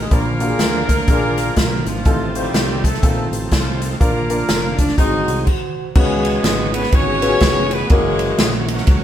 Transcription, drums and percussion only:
0.11 kick loud
0.11 closed hi-hat medium
0.40 closed hi-hat medium
0.59 snare medium
0.59 closed hi-hat medium
0.89 kick medium
0.89 closed hi-hat medium
1.08 kick loud
1.08 closed hi-hat medium
1.37 snare soft
1.37 closed hi-hat medium
1.56 kick medium
1.56 snare loud
1.56 closed hi-hat medium
1.86 closed hi-hat medium
2.05 kick loud
2.05 closed hi-hat medium
2.35 closed hi-hat medium
2.54 snare medium
2.54 closed hi-hat medium
2.84 kick medium
2.84 closed hi-hat medium
2.94 snare soft
3.03 kick loud
3.03 closed hi-hat medium
3.33 closed hi-hat medium
3.51 kick medium
3.51 snare loud
3.51 closed hi-hat medium
3.82 closed hi-hat medium
4.01 kick loud
4.01 closed hi-hat medium
4.30 closed hi-hat medium
4.49 snare loud
4.49 closed hi-hat medium
4.78 kick medium
4.78 closed hi-hat medium
4.88 snare soft
4.98 kick loud
4.98 closed hi-hat medium
5.28 closed hi-hat medium
5.47 kick medium
5.47 crash medium
5.95 kick loud
5.95 crash medium
6.25 ride medium
6.44 snare loud
6.44 ride medium
6.74 ride medium
6.83 snare soft
6.92 kick loud
6.92 ride medium
7.21 snare soft
7.21 ride medium
7.40 kick medium
7.40 snare loud
7.40 ride medium
7.71 ride medium
7.90 kick loud
7.90 ride medium
8.19 ride medium
8.38 snare loud
8.38 ride medium
8.68 ride medium
8.78 snare soft
8.87 kick loud
8.87 ride medium

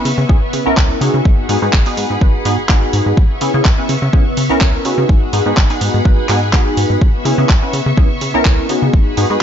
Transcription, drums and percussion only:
0.05 open hi-hat loud
0.29 kick loud
0.53 open hi-hat loud
0.77 kick loud
0.77 clap loud
1.01 open hi-hat loud
1.25 kick loud
1.49 open hi-hat loud
1.73 kick loud
1.73 clap loud
1.86 open hi-hat medium
1.97 open hi-hat loud
2.21 kick loud
2.45 open hi-hat loud
2.69 kick loud
2.69 clap loud
2.93 open hi-hat loud
3.17 kick loud
3.41 open hi-hat loud
3.65 kick loud
3.65 clap loud
3.89 open hi-hat loud
4.13 kick loud
4.37 open hi-hat loud
4.61 kick loud
4.61 clap loud
4.85 open hi-hat loud
5.09 kick loud
5.33 open hi-hat loud
5.57 kick loud
5.57 clap loud
5.70 open hi-hat medium
5.81 open hi-hat loud
6.05 kick loud
6.29 clap medium
6.29 open hi-hat loud
6.53 kick loud
6.53 clap loud
6.77 open hi-hat loud
7.01 kick loud
7.25 open hi-hat loud
7.49 kick loud
7.49 clap loud
7.73 open hi-hat loud
7.97 kick loud
8.21 open hi-hat loud
8.45 kick loud
8.45 clap loud
8.69 open hi-hat loud
8.93 kick loud
9.17 open hi-hat loud

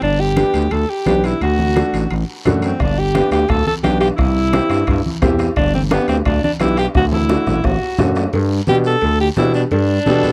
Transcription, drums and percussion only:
0.02 high conga soft
0.02 high timbale medium
0.02 long guiro medium
0.36 high conga medium
0.36 high timbale medium
0.36 short guiro medium
0.54 high timbale medium
0.54 short guiro medium
0.71 high conga soft
0.71 high timbale medium
0.71 long guiro medium
1.06 high conga medium
1.06 high timbale medium
1.06 low timbale medium
1.06 short guiro medium
1.24 high timbale medium
1.24 short guiro medium
1.41 high conga soft
1.41 high timbale medium
1.41 long guiro medium
1.59 high conga medium
1.76 high conga medium
1.76 high timbale medium
1.76 short guiro medium
1.94 high timbale medium
1.94 short guiro medium
2.10 high conga soft
2.10 high timbale medium
2.10 long guiro medium
2.45 high conga medium
2.45 low conga medium
2.45 high timbale medium
2.45 short guiro medium
2.62 high timbale medium
2.62 short guiro medium
2.80 bombo low medium
2.80 bombo rim medium
2.80 high conga soft
2.80 high timbale medium
2.80 long guiro medium
3.15 bombo rim medium
3.15 high conga medium
3.15 high timbale medium
3.15 short guiro medium
3.31 bombo rim medium
3.31 high timbale medium
3.31 short guiro medium
3.48 bombo low medium
3.48 bombo rim medium
3.48 high conga soft
3.48 high timbale medium
3.48 long guiro medium
3.67 high conga medium
3.84 bombo rim medium
3.84 high conga medium
3.84 high timbale medium
3.84 short guiro medium
4.01 bombo rim medium
4.01 high timbale medium
4.01 short guiro medium
4.18 bombo low medium
4.18 bombo rim medium
4.18 high conga soft
4.18 high timbale medium
4.18 long guiro medium
4.53 bombo rim medium
4.53 high conga medium
4.53 high timbale medium
4.53 short guiro medium
4.70 bombo rim medium
4.70 high timbale medium
4.70 short guiro medium
4.87 bombo low medium
4.87 bombo rim medium
4.87 high conga soft
4.87 high timbale medium
4.87 long guiro medium
5.06 high conga medium
5.22 bombo low medium
5.22 bombo rim medium
5.22 high conga medium
5.22 low conga medium
5.22 high timbale medium
5.22 low timbale medium
5.22 short guiro medium
5.39 bombo rim medium
5.39 high timbale medium
5.39 short guiro medium
5.56 bombo low medium
5.56 bombo rim medium
5.56 high conga soft
5.56 high timbale medium
5.56 long guiro medium
5.74 high conga medium
5.91 bombo rim medium
5.91 high conga loud
5.91 high timbale medium
5.91 short guiro medium
6.08 bombo rim medium
6.08 high timbale medium
6.08 short guiro medium
6.25 bombo low medium
6.25 bombo rim medium
6.25 high conga soft
6.25 high timbale medium
6.25 long guiro medium
6.44 high conga medium
6.60 bombo rim medium
6.60 high conga medium
6.60 high timbale medium
6.60 short guiro medium
6.77 bombo rim medium
6.77 high timbale medium
6.77 short guiro medium
6.95 bombo low medium
6.95 bombo rim medium
6.95 high conga soft
6.95 high timbale medium
6.95 long guiro medium
7.12 high conga medium
7.12 high timbale medium
7.29 bombo rim medium
7.29 high conga medium
7.29 high timbale medium
7.29 short guiro medium
7.47 bombo rim medium
7.47 low conga medium
7.47 short guiro medium
7.64 bombo low medium
7.64 bombo rim medium
7.64 high conga soft
7.64 low timbale medium
7.64 long guiro medium
7.99 bombo rim medium
7.99 high conga medium
7.99 low conga medium
7.99 low timbale medium
7.99 short guiro medium
8.15 bombo rim medium
8.15 low timbale medium
8.15 short guiro medium
8.33 cowbell medium
8.33 high conga soft
8.33 long guiro medium
8.67 high conga medium
8.67 short guiro medium
8.84 short guiro medium
9.01 cowbell medium
9.01 high conga soft
9.01 long guiro medium
9.36 high conga medium
9.36 low timbale medium
9.36 short guiro medium
9.54 short guiro medium
9.71 cowbell loud
9.71 high conga soft
9.71 long guiro medium
10.06 high conga medium
10.06 short guiro medium
10.23 low conga medium
10.23 short guiro medium

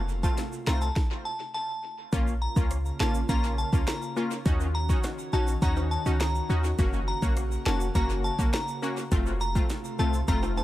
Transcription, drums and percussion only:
0.09 shaker medium
0.23 kick medium
0.23 shaker medium
0.38 snare medium
0.38 closed hi-hat medium
0.38 shaker medium
0.53 shaker medium
0.67 snare loud
0.67 clap medium
0.67 shaker medium
0.81 shaker medium
0.96 kick loud
0.96 snare medium
2.13 kick loud
2.13 closed hi-hat medium
2.13 shaker medium
2.27 shaker soft
2.56 kick loud
2.56 shaker medium
2.71 cross-stick medium
2.71 closed hi-hat medium
2.71 shaker medium
2.86 shaker medium
3.00 snare loud
3.00 clap medium
3.00 shaker soft
3.15 shaker medium
3.29 kick medium
3.29 closed hi-hat medium
3.29 shaker medium
3.44 shaker soft
3.58 shaker medium
3.73 kick loud
3.73 shaker medium
3.87 cross-stick medium
3.87 snare loud
3.87 clap medium
3.87 closed hi-hat medium
3.87 shaker medium
4.02 shaker medium
4.17 shaker medium
4.31 shaker medium
4.46 kick loud
4.46 closed hi-hat medium
4.46 shaker medium
4.60 shaker medium
4.89 kick loud
4.89 shaker medium
5.04 cross-stick medium
5.04 snare medium
5.04 closed hi-hat medium
5.04 shaker medium
5.18 shaker medium
5.33 shaker soft
5.47 shaker medium
5.62 kick medium
5.62 closed hi-hat medium
5.62 shaker medium
5.77 high timbale medium
5.77 shaker soft
5.91 shaker soft
6.06 shaker medium
6.20 cross-stick medium
6.20 snare loud
6.20 clap medium
6.20 closed hi-hat medium
6.20 shaker medium
6.35 shaker medium
6.50 shaker medium
6.64 shaker medium
6.79 kick loud
6.79 closed hi-hat medium
6.79 shaker medium
6.93 shaker medium
7.22 kick loud
7.22 shaker medium
7.37 cross-stick medium
7.37 closed hi-hat medium
7.37 shaker medium
7.51 shaker medium
7.66 snare loud
7.66 clap medium
7.66 shaker medium
7.80 shaker medium
7.95 kick medium
7.95 closed hi-hat medium
7.95 shaker medium
8.10 shaker soft
8.24 shaker soft
8.39 kick loud
8.39 shaker medium
8.53 cross-stick loud
8.53 snare loud
8.53 clap medium
8.53 closed hi-hat medium
8.53 shaker medium
8.68 shaker medium
8.83 shaker medium
8.97 shaker medium
9.12 kick loud
9.12 closed hi-hat medium
9.12 shaker medium
9.26 shaker medium
9.41 shaker medium
9.55 kick medium
9.55 shaker medium
9.70 snare medium
9.70 closed hi-hat medium
9.70 shaker medium
9.85 shaker medium
9.99 shaker medium
10.13 shaker medium
10.28 kick medium
10.28 closed hi-hat medium
10.28 shaker medium
10.43 high timbale medium
10.43 shaker soft
10.57 high timbale medium
10.57 shaker medium

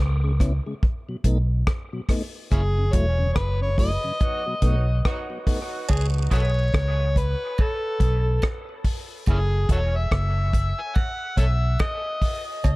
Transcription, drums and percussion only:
0.40 kick loud
0.40 cross-stick medium
0.40 closed hi-hat medium
0.83 kick loud
1.24 kick medium
1.24 closed hi-hat medium
1.67 kick loud
1.67 cross-stick loud
2.09 kick medium
2.09 cross-stick medium
2.09 open hi-hat medium
2.51 kick loud
2.51 hi-hat pedal medium
2.93 kick medium
2.93 closed hi-hat medium
3.36 kick loud
3.36 cross-stick loud
3.78 kick loud
3.78 open hi-hat medium
4.20 kick loud
4.20 hi-hat pedal medium
4.62 kick medium
4.62 closed hi-hat medium
5.05 kick loud
5.05 cross-stick loud
5.47 kick medium
5.47 open hi-hat medium
5.89 kick loud
5.89 hi-hat pedal medium
5.89 cowbell medium
5.89 vibraslap medium
6.31 kick medium
6.31 closed hi-hat medium
6.74 kick loud
6.74 cross-stick loud
7.16 kick loud
7.16 closed hi-hat medium
7.58 kick loud
7.58 cowbell medium
8.00 kick medium
8.00 closed hi-hat medium
8.42 kick loud
8.42 cross-stick loud
8.42 cowbell medium
8.84 kick medium
8.84 open hi-hat medium
9.26 kick loud
9.26 hi-hat pedal medium
9.26 cowbell medium
9.69 kick loud
9.69 closed hi-hat medium
10.11 kick loud
10.11 cross-stick loud
10.53 kick loud
10.53 closed hi-hat medium
10.95 kick loud
10.95 cowbell medium
11.37 kick medium
11.37 closed hi-hat medium
11.79 kick loud
11.79 cross-stick loud
11.79 cowbell medium
12.22 kick medium
12.22 open hi-hat medium
12.64 kick loud
12.64 hi-hat pedal medium
12.64 cowbell medium

